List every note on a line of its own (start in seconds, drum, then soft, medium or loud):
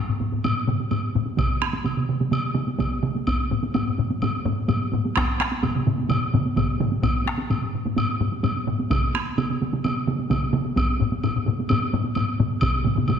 0.09 taiko low-mid medium
0.20 taiko low-mid medium
0.20 taiko high soft
0.32 taiko low-mid medium
0.32 taiko high soft
0.44 taiko low-mid medium
0.44 taiko high medium
0.44 high woodblock soft
0.67 taiko low-mid medium
0.67 taiko high soft
0.80 taiko high soft
0.91 taiko low-mid medium
0.91 taiko high medium
0.91 high woodblock soft
1.15 taiko low-mid medium
1.15 taiko high soft
1.26 taiko high soft
1.38 taiko medium
1.38 taiko mid medium
1.38 taiko high medium
1.38 high woodblock soft
1.62 taiko rim medium
1.62 taiko high soft
1.73 taiko high soft
1.85 taiko mid medium
1.85 taiko high medium
1.85 high woodblock soft
1.97 taiko mid medium
2.09 taiko mid medium
2.20 taiko mid medium
2.20 taiko high soft
2.31 taiko mid medium
2.31 taiko high medium
2.31 high woodblock soft
2.54 taiko mid medium
2.54 taiko high soft
2.67 taiko high soft
2.79 taiko medium
2.79 taiko mid medium
2.79 taiko high medium
2.79 high woodblock soft
3.03 taiko mid medium
3.03 taiko high soft
3.15 taiko high soft
3.27 taiko medium
3.27 taiko high medium
3.27 high woodblock soft
3.51 taiko low-mid medium
3.51 taiko high soft
3.63 taiko high medium
3.74 taiko low-mid medium
3.74 taiko high medium
3.74 high woodblock soft
3.88 taiko low-mid medium
3.98 taiko low-mid medium
3.98 taiko high soft
4.10 taiko high soft
4.22 taiko low-mid medium
4.22 taiko high medium
4.22 high woodblock soft
4.46 taiko low-mid loud
4.46 taiko high medium
4.68 taiko low-mid medium
4.68 taiko high medium
4.68 high woodblock soft
4.92 taiko low-mid medium
4.92 taiko high soft
5.05 taiko high medium
5.16 taiko rim medium
5.16 taiko medium
5.16 taiko high medium
5.16 high woodblock soft
5.18 taiko rim medium
5.40 taiko rim medium
5.40 taiko high soft
5.52 taiko high medium
5.63 taiko low-mid medium
5.63 taiko mid medium
5.63 taiko high medium
5.63 high woodblock soft
5.75 taiko low-mid medium
5.75 taiko mid medium
5.87 taiko low-mid medium
5.87 taiko mid medium
5.87 taiko high medium
5.98 taiko high soft
6.09 taiko low-mid medium
6.09 taiko mid medium
6.09 taiko high medium
6.09 high woodblock soft
6.34 taiko low-mid medium
6.34 taiko mid medium
6.34 taiko high medium
6.46 taiko high soft
6.56 taiko medium
6.56 taiko low-mid medium
6.56 taiko mid medium
6.56 taiko high medium
6.56 high woodblock soft
6.80 taiko low-mid medium
6.80 taiko mid medium
6.80 taiko high medium
6.92 taiko high soft
7.03 taiko medium
7.03 taiko low-mid loud
7.03 taiko high medium
7.03 high woodblock medium
7.26 taiko rim medium
7.26 taiko high soft
7.39 taiko high medium
7.50 taiko low-mid medium
7.50 taiko high medium
7.50 high woodblock soft
7.62 taiko low-mid medium
7.75 taiko low-mid medium
7.85 taiko low-mid medium
7.85 taiko high soft
7.97 taiko low-mid medium
7.97 taiko high medium
7.97 high woodblock soft
8.21 taiko low-mid medium
8.21 taiko high medium
8.32 taiko high soft
8.43 taiko low-mid medium
8.43 taiko high medium
8.43 high woodblock soft
8.67 taiko low-mid medium
8.67 taiko high soft
8.79 taiko high soft
8.90 taiko loud
8.90 taiko mid medium
8.90 taiko high medium
8.90 high woodblock soft
9.14 taiko rim medium
9.14 taiko high medium
9.38 taiko mid medium
9.38 taiko high medium
9.38 high woodblock soft
9.50 taiko mid medium
9.62 taiko mid medium
9.62 taiko high medium
9.73 taiko mid medium
9.73 taiko high medium
9.84 taiko mid loud
9.84 taiko high medium
9.84 high woodblock soft
10.07 taiko mid medium
10.07 taiko high medium
10.19 taiko high soft
10.30 taiko medium
10.30 taiko mid medium
10.30 taiko high medium
10.30 high woodblock soft
10.53 taiko mid loud
10.53 taiko high medium
10.65 taiko high medium
10.76 taiko medium
10.76 taiko high medium
10.76 high woodblock medium
11.00 taiko low-mid medium
11.00 taiko high medium
11.12 taiko high medium
11.24 taiko low-mid medium
11.24 taiko high medium
11.24 high woodblock soft
11.36 taiko low-mid medium
11.46 taiko low-mid medium
11.46 taiko high medium
11.59 taiko high medium
11.69 taiko low-mid medium
11.69 taiko high medium
11.69 high woodblock medium
11.94 taiko low-mid loud
11.94 taiko high medium
12.05 taiko high soft
12.15 taiko low-mid medium
12.15 taiko high medium
12.15 high woodblock soft
12.40 taiko low-mid loud
12.40 taiko high medium
12.61 taiko medium
12.61 taiko low-mid medium
12.61 taiko mid medium
12.61 taiko high medium
12.61 high woodblock medium
12.85 taiko low-mid medium
12.85 taiko mid medium
12.85 taiko high soft
12.96 taiko low-mid medium
12.96 taiko mid medium
12.96 taiko high medium
13.08 taiko low-mid medium
13.08 taiko mid medium
13.08 taiko high medium
13.08 high woodblock soft